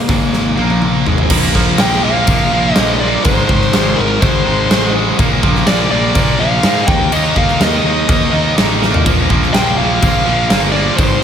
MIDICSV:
0, 0, Header, 1, 5, 480
1, 0, Start_track
1, 0, Tempo, 483871
1, 1302, Time_signature, 4, 2, 24, 8
1, 11145, End_track
2, 0, Start_track
2, 0, Title_t, "Lead electric guitar"
2, 0, Program_c, 0, 29
2, 0, Note_on_c, 0, 58, 68
2, 806, Note_off_c, 0, 58, 0
2, 1790, Note_on_c, 0, 79, 111
2, 2023, Note_off_c, 0, 79, 0
2, 2027, Note_on_c, 0, 77, 107
2, 2721, Note_off_c, 0, 77, 0
2, 2721, Note_on_c, 0, 75, 107
2, 2973, Note_on_c, 0, 74, 96
2, 3017, Note_off_c, 0, 75, 0
2, 3214, Note_off_c, 0, 74, 0
2, 3218, Note_on_c, 0, 72, 115
2, 3933, Note_on_c, 0, 70, 81
2, 3966, Note_off_c, 0, 72, 0
2, 4182, Note_on_c, 0, 72, 74
2, 4188, Note_off_c, 0, 70, 0
2, 4866, Note_off_c, 0, 72, 0
2, 5627, Note_on_c, 0, 74, 100
2, 5853, Note_off_c, 0, 74, 0
2, 5865, Note_on_c, 0, 74, 89
2, 6343, Note_on_c, 0, 77, 106
2, 6361, Note_off_c, 0, 74, 0
2, 6818, Note_off_c, 0, 77, 0
2, 6822, Note_on_c, 0, 79, 99
2, 7068, Note_on_c, 0, 75, 101
2, 7072, Note_off_c, 0, 79, 0
2, 7315, Note_off_c, 0, 75, 0
2, 7315, Note_on_c, 0, 77, 81
2, 7558, Note_off_c, 0, 77, 0
2, 7568, Note_on_c, 0, 75, 98
2, 8476, Note_off_c, 0, 75, 0
2, 9463, Note_on_c, 0, 79, 111
2, 9696, Note_off_c, 0, 79, 0
2, 9699, Note_on_c, 0, 77, 107
2, 10379, Note_off_c, 0, 77, 0
2, 10413, Note_on_c, 0, 77, 93
2, 10478, Note_off_c, 0, 77, 0
2, 10635, Note_on_c, 0, 74, 88
2, 10874, Note_off_c, 0, 74, 0
2, 10878, Note_on_c, 0, 72, 100
2, 11145, Note_off_c, 0, 72, 0
2, 11145, End_track
3, 0, Start_track
3, 0, Title_t, "Distorted electric guitar"
3, 0, Program_c, 1, 30
3, 81, Note_on_c, 1, 44, 86
3, 90, Note_on_c, 1, 51, 82
3, 98, Note_on_c, 1, 56, 88
3, 555, Note_off_c, 1, 51, 0
3, 559, Note_on_c, 1, 46, 83
3, 564, Note_off_c, 1, 44, 0
3, 565, Note_off_c, 1, 56, 0
3, 569, Note_on_c, 1, 53, 84
3, 571, Note_on_c, 1, 58, 92
3, 1044, Note_off_c, 1, 46, 0
3, 1049, Note_off_c, 1, 53, 0
3, 1051, Note_off_c, 1, 58, 0
3, 1053, Note_on_c, 1, 44, 97
3, 1060, Note_on_c, 1, 51, 98
3, 1063, Note_on_c, 1, 56, 98
3, 1283, Note_off_c, 1, 51, 0
3, 1287, Note_on_c, 1, 46, 101
3, 1291, Note_off_c, 1, 44, 0
3, 1291, Note_off_c, 1, 56, 0
3, 1295, Note_on_c, 1, 53, 104
3, 1298, Note_on_c, 1, 58, 108
3, 1522, Note_off_c, 1, 46, 0
3, 1530, Note_off_c, 1, 53, 0
3, 1534, Note_on_c, 1, 46, 84
3, 1538, Note_off_c, 1, 58, 0
3, 1542, Note_on_c, 1, 53, 84
3, 1550, Note_on_c, 1, 58, 88
3, 1757, Note_off_c, 1, 46, 0
3, 1763, Note_off_c, 1, 53, 0
3, 1769, Note_on_c, 1, 46, 111
3, 1772, Note_off_c, 1, 58, 0
3, 1775, Note_on_c, 1, 53, 106
3, 1783, Note_on_c, 1, 58, 127
3, 2006, Note_off_c, 1, 46, 0
3, 2014, Note_off_c, 1, 53, 0
3, 2017, Note_on_c, 1, 46, 82
3, 2019, Note_off_c, 1, 58, 0
3, 2026, Note_on_c, 1, 53, 91
3, 2031, Note_on_c, 1, 58, 82
3, 2255, Note_off_c, 1, 46, 0
3, 2264, Note_off_c, 1, 53, 0
3, 2267, Note_on_c, 1, 46, 97
3, 2268, Note_off_c, 1, 58, 0
3, 2276, Note_on_c, 1, 53, 93
3, 2280, Note_on_c, 1, 58, 104
3, 2487, Note_off_c, 1, 46, 0
3, 2496, Note_off_c, 1, 53, 0
3, 2499, Note_off_c, 1, 58, 0
3, 2499, Note_on_c, 1, 46, 105
3, 2508, Note_on_c, 1, 53, 101
3, 2511, Note_on_c, 1, 58, 121
3, 2732, Note_off_c, 1, 46, 0
3, 2742, Note_off_c, 1, 53, 0
3, 2744, Note_on_c, 1, 46, 91
3, 2749, Note_off_c, 1, 58, 0
3, 2754, Note_on_c, 1, 53, 97
3, 2761, Note_on_c, 1, 58, 102
3, 2972, Note_off_c, 1, 46, 0
3, 2975, Note_off_c, 1, 53, 0
3, 2984, Note_on_c, 1, 46, 89
3, 2987, Note_off_c, 1, 58, 0
3, 2987, Note_on_c, 1, 53, 104
3, 2998, Note_on_c, 1, 58, 111
3, 3212, Note_off_c, 1, 46, 0
3, 3213, Note_off_c, 1, 53, 0
3, 3218, Note_on_c, 1, 44, 114
3, 3219, Note_off_c, 1, 58, 0
3, 3228, Note_on_c, 1, 51, 112
3, 3234, Note_on_c, 1, 56, 112
3, 3446, Note_off_c, 1, 44, 0
3, 3454, Note_off_c, 1, 51, 0
3, 3458, Note_on_c, 1, 44, 91
3, 3460, Note_off_c, 1, 56, 0
3, 3466, Note_on_c, 1, 51, 87
3, 3472, Note_on_c, 1, 56, 104
3, 3692, Note_off_c, 1, 44, 0
3, 3698, Note_off_c, 1, 51, 0
3, 3704, Note_on_c, 1, 44, 109
3, 3706, Note_off_c, 1, 56, 0
3, 3710, Note_on_c, 1, 51, 116
3, 3718, Note_on_c, 1, 56, 127
3, 3927, Note_off_c, 1, 44, 0
3, 3936, Note_off_c, 1, 51, 0
3, 3939, Note_on_c, 1, 44, 86
3, 3940, Note_off_c, 1, 56, 0
3, 3948, Note_on_c, 1, 51, 75
3, 3952, Note_on_c, 1, 56, 88
3, 4168, Note_off_c, 1, 44, 0
3, 4174, Note_off_c, 1, 51, 0
3, 4179, Note_on_c, 1, 44, 95
3, 4180, Note_off_c, 1, 56, 0
3, 4186, Note_on_c, 1, 51, 99
3, 4192, Note_on_c, 1, 56, 111
3, 4404, Note_off_c, 1, 44, 0
3, 4409, Note_off_c, 1, 51, 0
3, 4415, Note_off_c, 1, 56, 0
3, 4416, Note_on_c, 1, 44, 101
3, 4421, Note_on_c, 1, 51, 103
3, 4427, Note_on_c, 1, 56, 93
3, 4638, Note_off_c, 1, 44, 0
3, 4648, Note_off_c, 1, 51, 0
3, 4650, Note_on_c, 1, 44, 91
3, 4653, Note_off_c, 1, 56, 0
3, 4660, Note_on_c, 1, 51, 84
3, 4665, Note_on_c, 1, 56, 95
3, 4888, Note_off_c, 1, 44, 0
3, 4898, Note_off_c, 1, 51, 0
3, 4899, Note_on_c, 1, 44, 86
3, 4904, Note_off_c, 1, 56, 0
3, 4910, Note_on_c, 1, 51, 92
3, 4916, Note_on_c, 1, 56, 88
3, 5130, Note_off_c, 1, 44, 0
3, 5133, Note_off_c, 1, 51, 0
3, 5137, Note_on_c, 1, 46, 93
3, 5138, Note_off_c, 1, 56, 0
3, 5143, Note_on_c, 1, 53, 120
3, 5150, Note_on_c, 1, 58, 121
3, 5366, Note_off_c, 1, 46, 0
3, 5375, Note_off_c, 1, 53, 0
3, 5377, Note_on_c, 1, 46, 90
3, 5387, Note_on_c, 1, 53, 86
3, 5389, Note_off_c, 1, 58, 0
3, 5393, Note_on_c, 1, 58, 96
3, 5605, Note_off_c, 1, 46, 0
3, 5611, Note_off_c, 1, 53, 0
3, 5616, Note_on_c, 1, 46, 103
3, 5623, Note_off_c, 1, 58, 0
3, 5623, Note_on_c, 1, 53, 107
3, 5627, Note_on_c, 1, 58, 113
3, 5852, Note_off_c, 1, 46, 0
3, 5859, Note_off_c, 1, 53, 0
3, 5864, Note_on_c, 1, 46, 83
3, 5871, Note_on_c, 1, 53, 86
3, 5873, Note_off_c, 1, 58, 0
3, 5877, Note_on_c, 1, 58, 96
3, 6087, Note_off_c, 1, 46, 0
3, 6093, Note_off_c, 1, 53, 0
3, 6099, Note_on_c, 1, 46, 87
3, 6105, Note_on_c, 1, 53, 98
3, 6107, Note_off_c, 1, 58, 0
3, 6111, Note_on_c, 1, 58, 100
3, 6324, Note_off_c, 1, 46, 0
3, 6327, Note_off_c, 1, 53, 0
3, 6336, Note_on_c, 1, 46, 102
3, 6339, Note_on_c, 1, 53, 98
3, 6348, Note_off_c, 1, 58, 0
3, 6352, Note_on_c, 1, 58, 115
3, 6573, Note_off_c, 1, 46, 0
3, 6581, Note_off_c, 1, 53, 0
3, 6585, Note_on_c, 1, 46, 90
3, 6593, Note_on_c, 1, 53, 94
3, 6596, Note_off_c, 1, 58, 0
3, 6600, Note_on_c, 1, 58, 102
3, 6812, Note_off_c, 1, 46, 0
3, 6816, Note_off_c, 1, 53, 0
3, 6817, Note_on_c, 1, 51, 94
3, 6825, Note_off_c, 1, 58, 0
3, 6825, Note_on_c, 1, 58, 119
3, 6833, Note_on_c, 1, 63, 107
3, 7047, Note_off_c, 1, 51, 0
3, 7059, Note_off_c, 1, 63, 0
3, 7059, Note_on_c, 1, 51, 100
3, 7062, Note_off_c, 1, 58, 0
3, 7066, Note_on_c, 1, 58, 93
3, 7071, Note_on_c, 1, 63, 110
3, 7286, Note_off_c, 1, 51, 0
3, 7297, Note_off_c, 1, 63, 0
3, 7297, Note_on_c, 1, 51, 84
3, 7302, Note_off_c, 1, 58, 0
3, 7306, Note_on_c, 1, 58, 98
3, 7309, Note_on_c, 1, 63, 106
3, 7526, Note_off_c, 1, 51, 0
3, 7538, Note_on_c, 1, 51, 109
3, 7544, Note_off_c, 1, 58, 0
3, 7544, Note_off_c, 1, 63, 0
3, 7548, Note_on_c, 1, 58, 110
3, 7556, Note_on_c, 1, 63, 114
3, 7770, Note_off_c, 1, 51, 0
3, 7782, Note_on_c, 1, 51, 82
3, 7787, Note_off_c, 1, 58, 0
3, 7787, Note_off_c, 1, 63, 0
3, 7791, Note_on_c, 1, 58, 75
3, 7799, Note_on_c, 1, 63, 99
3, 8011, Note_off_c, 1, 51, 0
3, 8015, Note_off_c, 1, 58, 0
3, 8023, Note_off_c, 1, 63, 0
3, 8023, Note_on_c, 1, 51, 103
3, 8026, Note_on_c, 1, 58, 95
3, 8035, Note_on_c, 1, 63, 103
3, 8244, Note_off_c, 1, 51, 0
3, 8250, Note_off_c, 1, 58, 0
3, 8256, Note_off_c, 1, 63, 0
3, 8256, Note_on_c, 1, 51, 96
3, 8261, Note_on_c, 1, 58, 107
3, 8268, Note_on_c, 1, 63, 106
3, 8481, Note_off_c, 1, 51, 0
3, 8485, Note_off_c, 1, 58, 0
3, 8493, Note_on_c, 1, 51, 73
3, 8495, Note_off_c, 1, 63, 0
3, 8497, Note_on_c, 1, 58, 98
3, 8507, Note_on_c, 1, 63, 106
3, 8718, Note_off_c, 1, 51, 0
3, 8729, Note_off_c, 1, 58, 0
3, 8730, Note_off_c, 1, 63, 0
3, 8730, Note_on_c, 1, 51, 82
3, 8741, Note_on_c, 1, 58, 105
3, 8742, Note_on_c, 1, 63, 96
3, 8962, Note_off_c, 1, 51, 0
3, 8968, Note_off_c, 1, 58, 0
3, 8968, Note_off_c, 1, 63, 0
3, 8985, Note_on_c, 1, 46, 103
3, 8988, Note_on_c, 1, 53, 111
3, 8994, Note_on_c, 1, 58, 103
3, 9212, Note_off_c, 1, 46, 0
3, 9217, Note_off_c, 1, 53, 0
3, 9224, Note_on_c, 1, 46, 96
3, 9228, Note_off_c, 1, 58, 0
3, 9229, Note_on_c, 1, 53, 89
3, 9240, Note_on_c, 1, 58, 96
3, 9446, Note_off_c, 1, 46, 0
3, 9453, Note_off_c, 1, 53, 0
3, 9458, Note_on_c, 1, 46, 102
3, 9463, Note_off_c, 1, 58, 0
3, 9465, Note_on_c, 1, 53, 113
3, 9475, Note_on_c, 1, 58, 106
3, 9689, Note_off_c, 1, 46, 0
3, 9698, Note_off_c, 1, 53, 0
3, 9701, Note_on_c, 1, 46, 79
3, 9703, Note_off_c, 1, 58, 0
3, 9710, Note_on_c, 1, 53, 82
3, 9715, Note_on_c, 1, 58, 84
3, 9937, Note_off_c, 1, 46, 0
3, 9945, Note_off_c, 1, 53, 0
3, 9949, Note_on_c, 1, 46, 94
3, 9953, Note_off_c, 1, 58, 0
3, 9957, Note_on_c, 1, 53, 87
3, 9965, Note_on_c, 1, 58, 91
3, 10170, Note_off_c, 1, 46, 0
3, 10178, Note_off_c, 1, 53, 0
3, 10182, Note_on_c, 1, 46, 101
3, 10184, Note_off_c, 1, 58, 0
3, 10190, Note_on_c, 1, 53, 113
3, 10196, Note_on_c, 1, 58, 116
3, 10410, Note_off_c, 1, 46, 0
3, 10421, Note_off_c, 1, 53, 0
3, 10422, Note_on_c, 1, 46, 83
3, 10425, Note_off_c, 1, 58, 0
3, 10433, Note_on_c, 1, 53, 96
3, 10437, Note_on_c, 1, 58, 93
3, 10654, Note_off_c, 1, 46, 0
3, 10662, Note_off_c, 1, 53, 0
3, 10665, Note_off_c, 1, 58, 0
3, 10666, Note_on_c, 1, 46, 92
3, 10674, Note_on_c, 1, 53, 93
3, 10677, Note_on_c, 1, 58, 91
3, 10888, Note_off_c, 1, 46, 0
3, 10892, Note_off_c, 1, 53, 0
3, 10894, Note_off_c, 1, 58, 0
3, 10898, Note_on_c, 1, 44, 107
3, 10908, Note_on_c, 1, 51, 109
3, 10913, Note_on_c, 1, 56, 122
3, 11128, Note_off_c, 1, 44, 0
3, 11138, Note_off_c, 1, 51, 0
3, 11143, Note_off_c, 1, 56, 0
3, 11145, End_track
4, 0, Start_track
4, 0, Title_t, "Picked electric bass"
4, 0, Program_c, 2, 34
4, 89, Note_on_c, 2, 32, 85
4, 541, Note_off_c, 2, 32, 0
4, 572, Note_on_c, 2, 34, 84
4, 1024, Note_off_c, 2, 34, 0
4, 1061, Note_on_c, 2, 32, 91
4, 1285, Note_off_c, 2, 32, 0
4, 1300, Note_on_c, 2, 34, 93
4, 1491, Note_off_c, 2, 34, 0
4, 1536, Note_on_c, 2, 34, 98
4, 1729, Note_off_c, 2, 34, 0
4, 1775, Note_on_c, 2, 34, 100
4, 1969, Note_off_c, 2, 34, 0
4, 2020, Note_on_c, 2, 34, 91
4, 2212, Note_off_c, 2, 34, 0
4, 2257, Note_on_c, 2, 34, 100
4, 2451, Note_off_c, 2, 34, 0
4, 2507, Note_on_c, 2, 34, 91
4, 2697, Note_off_c, 2, 34, 0
4, 2750, Note_on_c, 2, 34, 97
4, 3128, Note_off_c, 2, 34, 0
4, 3228, Note_on_c, 2, 32, 101
4, 3418, Note_off_c, 2, 32, 0
4, 3469, Note_on_c, 2, 32, 90
4, 3658, Note_off_c, 2, 32, 0
4, 3716, Note_on_c, 2, 32, 105
4, 3903, Note_off_c, 2, 32, 0
4, 3956, Note_on_c, 2, 32, 93
4, 4143, Note_off_c, 2, 32, 0
4, 4186, Note_on_c, 2, 32, 102
4, 4377, Note_off_c, 2, 32, 0
4, 4433, Note_on_c, 2, 32, 98
4, 4621, Note_off_c, 2, 32, 0
4, 4679, Note_on_c, 2, 33, 88
4, 5054, Note_off_c, 2, 33, 0
4, 5150, Note_on_c, 2, 34, 91
4, 5339, Note_off_c, 2, 34, 0
4, 5392, Note_on_c, 2, 34, 89
4, 5580, Note_off_c, 2, 34, 0
4, 5623, Note_on_c, 2, 34, 104
4, 5815, Note_off_c, 2, 34, 0
4, 5861, Note_on_c, 2, 34, 85
4, 6054, Note_off_c, 2, 34, 0
4, 6108, Note_on_c, 2, 34, 98
4, 6298, Note_off_c, 2, 34, 0
4, 6345, Note_on_c, 2, 34, 89
4, 6536, Note_off_c, 2, 34, 0
4, 6587, Note_on_c, 2, 44, 105
4, 6777, Note_off_c, 2, 44, 0
4, 6821, Note_on_c, 2, 39, 97
4, 7013, Note_off_c, 2, 39, 0
4, 7062, Note_on_c, 2, 39, 100
4, 7253, Note_off_c, 2, 39, 0
4, 7305, Note_on_c, 2, 39, 93
4, 7495, Note_off_c, 2, 39, 0
4, 7539, Note_on_c, 2, 39, 98
4, 7731, Note_off_c, 2, 39, 0
4, 7776, Note_on_c, 2, 39, 94
4, 7969, Note_off_c, 2, 39, 0
4, 8025, Note_on_c, 2, 39, 98
4, 8215, Note_off_c, 2, 39, 0
4, 8261, Note_on_c, 2, 39, 100
4, 8452, Note_off_c, 2, 39, 0
4, 8514, Note_on_c, 2, 33, 98
4, 8888, Note_off_c, 2, 33, 0
4, 8991, Note_on_c, 2, 34, 96
4, 9177, Note_off_c, 2, 34, 0
4, 9227, Note_on_c, 2, 34, 100
4, 9415, Note_off_c, 2, 34, 0
4, 9471, Note_on_c, 2, 34, 102
4, 9657, Note_off_c, 2, 34, 0
4, 9713, Note_on_c, 2, 34, 94
4, 9898, Note_off_c, 2, 34, 0
4, 9946, Note_on_c, 2, 34, 100
4, 10133, Note_off_c, 2, 34, 0
4, 10189, Note_on_c, 2, 34, 90
4, 10375, Note_off_c, 2, 34, 0
4, 10422, Note_on_c, 2, 31, 92
4, 10799, Note_off_c, 2, 31, 0
4, 10898, Note_on_c, 2, 32, 94
4, 11087, Note_off_c, 2, 32, 0
4, 11145, End_track
5, 0, Start_track
5, 0, Title_t, "Drums"
5, 88, Note_on_c, 9, 36, 106
5, 89, Note_on_c, 9, 46, 48
5, 187, Note_off_c, 9, 36, 0
5, 188, Note_off_c, 9, 46, 0
5, 328, Note_on_c, 9, 38, 56
5, 427, Note_off_c, 9, 38, 0
5, 571, Note_on_c, 9, 48, 56
5, 670, Note_off_c, 9, 48, 0
5, 696, Note_on_c, 9, 48, 65
5, 795, Note_off_c, 9, 48, 0
5, 812, Note_on_c, 9, 47, 80
5, 911, Note_off_c, 9, 47, 0
5, 1056, Note_on_c, 9, 43, 86
5, 1155, Note_off_c, 9, 43, 0
5, 1172, Note_on_c, 9, 43, 76
5, 1271, Note_off_c, 9, 43, 0
5, 1288, Note_on_c, 9, 49, 127
5, 1288, Note_on_c, 9, 57, 68
5, 1295, Note_on_c, 9, 36, 115
5, 1387, Note_off_c, 9, 49, 0
5, 1387, Note_off_c, 9, 57, 0
5, 1394, Note_off_c, 9, 36, 0
5, 1537, Note_on_c, 9, 36, 79
5, 1636, Note_off_c, 9, 36, 0
5, 1767, Note_on_c, 9, 57, 80
5, 1768, Note_on_c, 9, 38, 121
5, 1867, Note_off_c, 9, 57, 0
5, 1868, Note_off_c, 9, 38, 0
5, 2252, Note_on_c, 9, 57, 69
5, 2258, Note_on_c, 9, 36, 108
5, 2351, Note_off_c, 9, 57, 0
5, 2357, Note_off_c, 9, 36, 0
5, 2735, Note_on_c, 9, 57, 68
5, 2736, Note_on_c, 9, 38, 126
5, 2834, Note_off_c, 9, 57, 0
5, 2835, Note_off_c, 9, 38, 0
5, 3220, Note_on_c, 9, 57, 67
5, 3225, Note_on_c, 9, 36, 126
5, 3319, Note_off_c, 9, 57, 0
5, 3325, Note_off_c, 9, 36, 0
5, 3464, Note_on_c, 9, 36, 86
5, 3563, Note_off_c, 9, 36, 0
5, 3585, Note_on_c, 9, 38, 33
5, 3684, Note_off_c, 9, 38, 0
5, 3703, Note_on_c, 9, 57, 60
5, 3704, Note_on_c, 9, 38, 127
5, 3803, Note_off_c, 9, 57, 0
5, 3804, Note_off_c, 9, 38, 0
5, 4188, Note_on_c, 9, 57, 59
5, 4189, Note_on_c, 9, 36, 115
5, 4287, Note_off_c, 9, 57, 0
5, 4288, Note_off_c, 9, 36, 0
5, 4671, Note_on_c, 9, 57, 60
5, 4672, Note_on_c, 9, 38, 120
5, 4770, Note_off_c, 9, 57, 0
5, 4771, Note_off_c, 9, 38, 0
5, 5149, Note_on_c, 9, 36, 120
5, 5149, Note_on_c, 9, 57, 67
5, 5248, Note_off_c, 9, 36, 0
5, 5248, Note_off_c, 9, 57, 0
5, 5388, Note_on_c, 9, 36, 87
5, 5488, Note_off_c, 9, 36, 0
5, 5510, Note_on_c, 9, 38, 39
5, 5609, Note_off_c, 9, 38, 0
5, 5622, Note_on_c, 9, 57, 64
5, 5623, Note_on_c, 9, 38, 126
5, 5721, Note_off_c, 9, 57, 0
5, 5722, Note_off_c, 9, 38, 0
5, 6101, Note_on_c, 9, 57, 64
5, 6105, Note_on_c, 9, 36, 108
5, 6200, Note_off_c, 9, 57, 0
5, 6204, Note_off_c, 9, 36, 0
5, 6580, Note_on_c, 9, 57, 67
5, 6581, Note_on_c, 9, 38, 113
5, 6679, Note_off_c, 9, 57, 0
5, 6680, Note_off_c, 9, 38, 0
5, 6824, Note_on_c, 9, 36, 126
5, 6923, Note_off_c, 9, 36, 0
5, 7064, Note_on_c, 9, 57, 69
5, 7163, Note_off_c, 9, 57, 0
5, 7303, Note_on_c, 9, 36, 74
5, 7402, Note_off_c, 9, 36, 0
5, 7419, Note_on_c, 9, 38, 36
5, 7519, Note_off_c, 9, 38, 0
5, 7545, Note_on_c, 9, 57, 65
5, 7546, Note_on_c, 9, 38, 114
5, 7644, Note_off_c, 9, 57, 0
5, 7645, Note_off_c, 9, 38, 0
5, 8025, Note_on_c, 9, 36, 123
5, 8027, Note_on_c, 9, 57, 63
5, 8124, Note_off_c, 9, 36, 0
5, 8126, Note_off_c, 9, 57, 0
5, 8510, Note_on_c, 9, 57, 62
5, 8511, Note_on_c, 9, 38, 117
5, 8609, Note_off_c, 9, 57, 0
5, 8610, Note_off_c, 9, 38, 0
5, 8752, Note_on_c, 9, 38, 67
5, 8851, Note_off_c, 9, 38, 0
5, 8872, Note_on_c, 9, 43, 101
5, 8971, Note_off_c, 9, 43, 0
5, 8987, Note_on_c, 9, 57, 72
5, 8988, Note_on_c, 9, 36, 121
5, 9086, Note_off_c, 9, 57, 0
5, 9087, Note_off_c, 9, 36, 0
5, 9227, Note_on_c, 9, 36, 88
5, 9326, Note_off_c, 9, 36, 0
5, 9350, Note_on_c, 9, 38, 34
5, 9450, Note_off_c, 9, 38, 0
5, 9467, Note_on_c, 9, 57, 62
5, 9468, Note_on_c, 9, 38, 118
5, 9567, Note_off_c, 9, 57, 0
5, 9568, Note_off_c, 9, 38, 0
5, 9946, Note_on_c, 9, 36, 115
5, 9946, Note_on_c, 9, 57, 73
5, 10045, Note_off_c, 9, 36, 0
5, 10045, Note_off_c, 9, 57, 0
5, 10418, Note_on_c, 9, 57, 74
5, 10419, Note_on_c, 9, 38, 109
5, 10518, Note_off_c, 9, 57, 0
5, 10519, Note_off_c, 9, 38, 0
5, 10897, Note_on_c, 9, 36, 120
5, 10897, Note_on_c, 9, 57, 72
5, 10996, Note_off_c, 9, 36, 0
5, 10996, Note_off_c, 9, 57, 0
5, 11145, End_track
0, 0, End_of_file